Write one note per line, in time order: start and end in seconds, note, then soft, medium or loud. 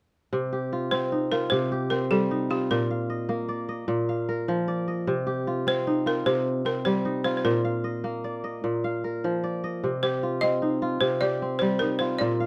0.33 1.50 C3 medium
0.53 1.71 G4 medium
0.73 1.31 F4 medium
0.91 1.90 C4 medium
0.91 1.32 C5 medium
1.12 2.30 D#4 medium
1.32 2.50 F4 medium
1.32 1.52 A#4 medium
1.50 2.74 C3 medium
1.50 1.91 C5 medium
1.72 3.13 G4 medium
1.90 3.71 C4 medium
1.90 1.99 A#4 medium
2.11 2.74 G3 medium
2.11 2.51 A4 medium
2.31 3.55 D#4 medium
2.50 4.01 F4 medium
2.50 2.69 G4 medium
2.71 3.87 A#2 medium
2.71 3.12 A#4 medium
2.90 3.90 F5 medium
3.10 3.68 D#5 medium
3.29 5.22 A#3 medium
3.49 4.59 D5 medium
3.69 4.74 D#5 medium
3.88 5.12 A#2 medium
4.09 5.09 F5 medium
4.29 5.56 A#4 medium
4.48 5.12 F3 medium
4.68 5.79 D5 medium
4.88 5.95 D#5 medium
5.07 6.25 C3 medium
5.27 6.68 G4 medium
5.47 6.06 F4 medium
5.67 6.65 C4 medium
5.67 6.08 C5 medium
5.87 7.05 D#4 medium
6.06 7.24 F4 medium
6.06 6.16 A#4 medium
6.26 7.49 C3 medium
6.26 6.67 C5 medium
6.65 8.45 C4 medium
6.65 6.86 A#4 medium
6.85 7.49 G3 medium
6.85 7.23 C5 medium
7.05 8.30 D#4 medium
7.24 8.76 F4 medium
7.24 7.36 C5 medium
7.37 7.44 C5 medium
7.45 8.63 A#2 medium
7.45 7.86 A#4 medium
7.65 8.64 F5 medium
7.84 8.43 D#5 medium
8.04 9.97 A#3 medium
8.24 9.35 D5 medium
8.44 9.50 D#5 medium
8.64 9.87 A#2 medium
8.84 9.84 F5 medium
9.04 10.31 A#4 medium
9.24 9.87 F3 medium
9.44 10.54 D5 medium
9.64 10.71 D#5 medium
9.84 11.00 C3 medium
10.03 11.21 G4 medium
10.03 10.43 C5 medium
10.23 10.82 F4 soft
10.41 11.42 C4 medium
10.41 10.97 D#5 medium
10.62 11.81 D#4 medium
10.82 12.00 F4 medium
11.01 12.25 C3 medium
11.01 11.21 C5 medium
11.21 12.46 G4 medium
11.21 11.61 D5 medium
11.42 12.46 C4 medium
11.59 12.25 G3 medium
11.59 11.80 C5 medium
11.79 12.46 D#4 medium
11.79 12.00 A#4 medium
11.99 12.46 F4 medium
11.99 12.08 C5 medium
12.19 12.46 A#2 medium
12.19 12.46 D5 medium
12.40 12.46 F5 medium